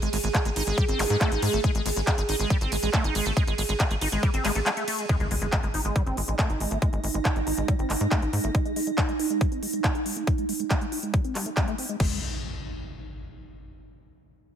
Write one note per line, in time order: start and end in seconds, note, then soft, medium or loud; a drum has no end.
0.00 0.08 G#1 medium
0.00 0.09 G#3 medium
0.00 5.10 G#4 medium
0.00 closed hi-hat medium
0.13 0.19 G#1 loud
0.13 0.17 G#3 medium
0.13 open hi-hat loud
0.13 ride medium
0.24 0.30 G#1 medium
0.24 0.28 G#3 medium
0.24 closed hi-hat medium
0.35 0.39 G#3 loud
0.35 kick loud
0.35 clap loud
0.35 closed hi-hat medium
0.45 0.51 G#1 medium
0.45 0.50 G#3 medium
0.45 closed hi-hat medium
0.56 0.62 G#1 loud
0.56 0.63 D#4 medium
0.56 open hi-hat loud
0.56 ride medium
0.67 0.73 G#1 medium
0.67 0.77 G#3 medium
0.67 closed hi-hat medium
0.78 0.85 G3 loud
0.78 kick loud
0.78 closed hi-hat medium
0.88 0.95 G#1 medium
0.88 0.99 C4 medium
0.88 closed hi-hat medium
0.99 1.05 G#1 loud
0.99 1.04 G#3 medium
0.99 clap medium
0.99 open hi-hat loud
0.99 ride medium
0.99 zap medium
1.10 1.16 G#2 medium
1.10 1.17 G#3 medium
1.10 closed hi-hat medium
1.21 1.31 A3 loud
1.21 kick loud
1.21 clap loud
1.21 closed hi-hat medium
1.32 1.38 A1 medium
1.32 1.42 D#4 medium
1.32 closed hi-hat medium
1.42 1.48 G#2 loud
1.42 1.53 G#3 medium
1.42 open hi-hat loud
1.42 ride medium
1.53 1.59 G#1 medium
1.53 1.60 A3 medium
1.53 closed hi-hat medium
1.64 1.71 G#3 loud
1.64 kick loud
1.64 closed hi-hat medium
1.75 1.81 G#1 medium
1.75 1.82 G#3 medium
1.75 closed hi-hat medium
1.86 1.92 G#1 loud
1.86 1.90 G#3 medium
1.86 open hi-hat loud
1.86 ride medium
1.96 2.02 G#1 medium
1.96 2.01 G#3 medium
1.96 closed hi-hat medium
2.07 2.11 G#3 loud
2.07 kick loud
2.07 clap loud
2.07 closed hi-hat medium
2.18 2.24 G#1 medium
2.18 2.22 G#3 medium
2.18 closed hi-hat medium
2.29 2.35 G#1 loud
2.29 2.36 D#4 medium
2.29 open hi-hat loud
2.29 ride medium
2.40 2.46 G#1 medium
2.40 2.50 G#3 medium
2.40 closed hi-hat medium
2.50 2.57 G3 loud
2.50 kick loud
2.50 closed hi-hat medium
2.61 2.67 G#1 medium
2.61 2.71 C4 medium
2.61 closed hi-hat medium
2.72 2.78 G#1 loud
2.72 2.76 G#3 medium
2.72 open hi-hat loud
2.72 ride medium
2.83 2.89 A1 medium
2.83 2.90 G#3 medium
2.83 closed hi-hat medium
2.93 3.04 A3 loud
2.93 kick loud
2.93 clap loud
2.93 closed hi-hat medium
3.04 3.10 G#1 medium
3.04 3.15 D#4 medium
3.04 closed hi-hat medium
3.15 3.21 G#1 loud
3.15 3.25 G#3 medium
3.15 open hi-hat loud
3.15 ride medium
3.26 3.32 G#1 medium
3.26 3.33 A3 medium
3.26 closed hi-hat medium
3.37 3.44 G#3 loud
3.37 kick loud
3.37 closed hi-hat medium
3.47 3.53 G#1 medium
3.47 3.55 G#3 medium
3.47 closed hi-hat medium
3.58 3.64 G#1 loud
3.58 3.63 G#3 medium
3.58 open hi-hat loud
3.58 ride medium
3.69 3.75 G#1 medium
3.69 3.73 G#3 medium
3.69 closed hi-hat medium
3.80 3.84 G#3 loud
3.80 kick loud
3.80 clap loud
3.80 closed hi-hat medium
3.91 3.97 G#1 medium
3.91 3.95 G#3 medium
3.91 closed hi-hat medium
4.01 4.07 G#1 loud
4.01 4.09 D#4 medium
4.01 open hi-hat loud
4.01 ride medium
4.12 4.18 G#1 medium
4.12 4.22 G#3 medium
4.12 closed hi-hat medium
4.23 4.30 G3 loud
4.23 kick loud
4.23 closed hi-hat medium
4.34 4.40 G#1 medium
4.34 4.44 C4 medium
4.34 closed hi-hat medium
4.45 4.51 G#1 loud
4.45 4.52 G#3 loud
4.45 clap medium
4.45 open hi-hat loud
4.45 ride medium
4.55 4.61 A1 medium
4.55 4.60 A3 medium
4.55 closed hi-hat medium
4.66 4.70 G#3 loud
4.66 clap loud
4.66 closed hi-hat medium
4.77 4.84 A3 medium
4.77 closed hi-hat medium
4.88 5.00 A3 medium
4.88 open hi-hat loud
4.88 ride medium
4.99 5.06 G#3 medium
4.99 closed hi-hat medium
5.09 5.16 G#3 loud
5.09 12.01 D#4 medium
5.09 kick loud
5.09 closed hi-hat medium
5.09 impact medium
5.20 5.26 G#1 medium
5.20 5.27 G#3 medium
5.20 closed hi-hat soft
5.31 5.37 G#1 loud
5.31 5.35 G#3 medium
5.31 open hi-hat loud
5.42 5.48 G#1 medium
5.42 5.46 G#3 medium
5.42 closed hi-hat medium
5.52 5.57 G#3 loud
5.52 kick loud
5.52 clap loud
5.52 closed hi-hat medium
5.63 5.69 G#1 medium
5.63 5.68 G#3 medium
5.63 closed hi-hat soft
5.74 5.80 G#1 medium
5.74 5.81 D#4 medium
5.74 open hi-hat loud
5.85 5.91 G#1 medium
5.85 5.95 G#3 medium
5.85 closed hi-hat medium
5.96 6.03 G3 loud
5.96 kick loud
5.96 closed hi-hat medium
6.06 6.12 G#1 medium
6.06 6.17 C4 medium
6.06 closed hi-hat soft
6.17 6.23 G#1 loud
6.17 6.22 G#3 medium
6.17 open hi-hat loud
6.28 6.34 A1 medium
6.28 6.35 G#3 medium
6.28 closed hi-hat medium
6.39 6.49 A3 loud
6.39 kick loud
6.39 clap loud
6.39 closed hi-hat medium
6.50 6.56 G#1 medium
6.50 6.60 D#4 medium
6.50 closed hi-hat soft
6.60 6.66 G#1 loud
6.60 6.71 G#3 medium
6.60 open hi-hat loud
6.71 6.77 G#1 medium
6.71 6.78 A3 medium
6.71 closed hi-hat medium
6.82 6.89 G#3 loud
6.82 kick loud
6.82 closed hi-hat medium
6.93 6.99 G#1 medium
6.93 7.00 G#3 medium
6.93 closed hi-hat soft
7.04 7.10 G#1 loud
7.04 7.08 G#3 medium
7.04 open hi-hat loud
7.14 7.20 G#1 medium
7.14 7.19 G#3 medium
7.14 closed hi-hat medium
7.25 7.29 G#3 loud
7.25 kick loud
7.25 clap loud
7.25 closed hi-hat medium
7.36 7.42 G#1 medium
7.36 7.40 G#3 medium
7.36 closed hi-hat soft
7.47 7.53 G#1 medium
7.47 7.54 D#4 medium
7.47 open hi-hat loud
7.58 7.64 G#1 medium
7.58 7.68 G#3 medium
7.58 closed hi-hat medium
7.68 7.75 G3 loud
7.68 kick loud
7.68 closed hi-hat medium
7.79 7.85 G#1 medium
7.79 7.89 C4 medium
7.79 closed hi-hat soft
7.90 7.96 G#1 loud
7.90 7.94 G#3 medium
7.90 clap medium
7.90 open hi-hat loud
8.01 8.07 G#2 medium
8.01 8.08 G#3 medium
8.01 closed hi-hat medium
8.11 8.22 A3 loud
8.11 kick loud
8.11 clap loud
8.11 closed hi-hat medium
8.22 8.28 A1 medium
8.22 8.33 D#4 medium
8.22 closed hi-hat soft
8.33 8.39 G#2 loud
8.33 8.43 G#3 medium
8.33 open hi-hat loud
8.44 8.50 G#1 medium
8.44 8.51 A3 medium
8.44 closed hi-hat medium
8.55 8.62 G#3 loud
8.55 kick loud
8.55 closed hi-hat medium
8.65 8.73 G#3 medium
8.65 closed hi-hat soft
8.76 8.80 G#3 medium
8.76 open hi-hat loud
8.87 8.91 G#3 medium
8.87 closed hi-hat medium
8.98 9.02 G#3 loud
8.98 kick loud
8.98 clap loud
8.98 closed hi-hat medium
9.09 9.13 G#3 medium
9.09 closed hi-hat soft
9.19 9.26 D#4 medium
9.19 open hi-hat loud
9.30 9.40 G#3 medium
9.30 closed hi-hat medium
9.41 9.48 G3 loud
9.41 kick loud
9.41 closed hi-hat medium
9.52 9.62 C4 medium
9.52 closed hi-hat soft
9.63 9.67 G#3 medium
9.63 open hi-hat loud
9.73 9.80 G#3 medium
9.73 closed hi-hat medium
9.84 9.94 A3 loud
9.84 kick loud
9.84 clap loud
9.84 closed hi-hat medium
9.95 10.05 D#4 medium
9.95 closed hi-hat soft
10.06 10.16 G#3 medium
10.06 open hi-hat loud
10.17 10.24 A3 medium
10.17 closed hi-hat medium
10.27 10.34 G#3 loud
10.27 kick loud
10.27 closed hi-hat medium
10.38 10.45 G#3 medium
10.38 closed hi-hat soft
10.49 10.53 G#3 medium
10.49 open hi-hat loud
10.60 10.64 G#3 medium
10.60 closed hi-hat medium
10.71 10.75 G#3 loud
10.71 kick loud
10.71 clap loud
10.71 closed hi-hat medium
10.81 10.86 G#3 medium
10.81 closed hi-hat soft
10.92 10.99 D#4 medium
10.92 open hi-hat loud
11.03 11.13 G#3 medium
11.03 closed hi-hat medium
11.14 11.21 G3 loud
11.14 kick loud
11.14 closed hi-hat soft
11.24 11.35 C4 medium
11.24 closed hi-hat soft
11.35 11.46 G3 medium
11.35 clap medium
11.35 open hi-hat loud
11.46 11.50 A3 medium
11.46 closed hi-hat medium
11.57 11.67 G#3 loud
11.57 kick loud
11.57 clap loud
11.57 closed hi-hat soft
11.68 11.75 A3 loud
11.68 closed hi-hat soft
11.78 11.86 C4 medium
11.78 open hi-hat loud
11.89 11.96 G#3 medium
11.89 closed hi-hat soft
12.00 12.20 G#1 loud
12.00 12.20 G#3 medium
12.00 kick loud
12.00 crash medium
12.00 impact medium